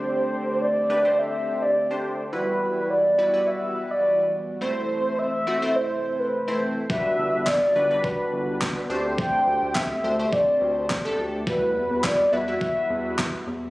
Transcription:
<<
  \new Staff \with { instrumentName = "Soft synth lead" } { \time 4/4 \key d \mixolydian \tempo 4 = 105 c''4 d''4 e''8. d''8. r8 | b'4 d''4 e''8. d''8. r8 | c''4 e''4 c''8. b'8. r8 | e''4 d''4 b'4. r8 |
g''4 e''4 d''4. r8 | b'4 d''8 e''8 e''4 r4 | }
  \new Staff \with { instrumentName = "Analog polysynth" } { \time 4/4 \key d \mixolydian <a d' g' c''>4 r8 <a d' g' b'>16 <a d' g' c''>4~ <a d' g' c''>16 r16 <a d' g' c''>8 r16 | <g e' fis' b'>4~ <g e' fis' b'>16 r16 <g e' fis' b'>16 <g e' fis' b'>4. r8. | <a c' e' c''>4~ <a c' e' c''>16 r16 <a c' e' fis'>16 <a c' e' c''>4~ <a c' e' c''>16 r16 <a c' e' c''>8 r16 | <g d' fis' b'>4~ <g d' fis' b'>16 r16 <g d' fis' b'>16 <g d' fis' b'>4. r16 <a d' g' c''>8~ |
<a d' g' c''>4 r8 <a d' g' c''>16 <a d' g' c''>4~ <a d' g' c''>16 r16 <a d' g' a'>8 r16 | <g e' fis' b'>4~ <g e' fis' b'>16 r16 <g e' fis' b'>16 <g e' fis' b'>4. r8. | }
  \new Staff \with { instrumentName = "Analog synth pad" } { \time 4/4 \key d \mixolydian <d a c' g'>1 | <e g b fis'>1 | <c a>1 | <d g b fis'>2.~ <d g b fis'>8 <d a c' g'>8~ |
<d a c' g'>1 | e1 | }
  \new Staff \with { instrumentName = "Analog synth bass" } { \clef bass \time 4/4 \key d \mixolydian r1 | r1 | r1 | r8 g,,16 g,,8. g,,8 r8 g,,4 d,8~ |
d,8 d,16 d,8. d,8 r8 d,4 d,8~ | d,8 e,16 e,8. e,8 r8 e,4 e,8 | }
  \new DrumStaff \with { instrumentName = "Drums" } \drummode { \time 4/4 r4 r4 r4 r4 | r4 r4 r4 r4 | r4 r4 r4 r4 | bd4 <hc bd sn>4 bd4 <hc bd sn>4 |
bd4 <hc bd sn>4 bd4 <hc bd sn>4 | bd4 <hc bd sn>4 bd4 <hc bd sn>4 | }
>>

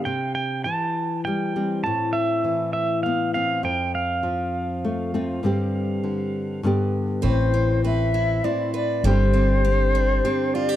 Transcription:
<<
  \new Staff \with { instrumentName = "Pedal steel guitar" } { \time 3/4 \key a \minor \tempo 4 = 100 g''8 g''8 a''4 g''4 | a''8 e''4 e''8 f''8 f''8 | g''8 f''2~ f''8~ | f''2 r4 |
r2. | r2. | }
  \new Staff \with { instrumentName = "Flute" } { \time 3/4 \key a \minor r2. | r2. | r2. | r2. |
c''4 e''4 d''8 d''8 | c''2~ c''8 d''8 | }
  \new Staff \with { instrumentName = "Steel-string acoustic guitar" } { \time 3/4 \key a \minor r2. | r2. | r2. | r2. |
<c' b'>8 c'8 b'8 e'8 c'8 b'8 | <g g'>8 c'8 g'8 d'8 c'8 f'16 g'16 | }
  \new Staff \with { instrumentName = "Nylon-string guitar" } { \time 3/4 \key a \minor << { r2 g8 <g c'>8 | r2 b8 <b c'>8 | r2 a8 <a c' f'>8 | <d g c' g'>2 <d b d' g'>4 |
r4 c'4 e'4 | <d g c' g'>4 c'4 g'4 | } \\ { c4 e2 | a,4 e2 | f,4 f2 | g,4 d4 g,4 |
a,2. | g,2. | } >> }
  \new Staff \with { instrumentName = "Upright bass" } { \clef bass \time 3/4 \key a \minor r2. | r2. | r2. | r2. |
a,,2 r4 | g,,2 r4 | }
>>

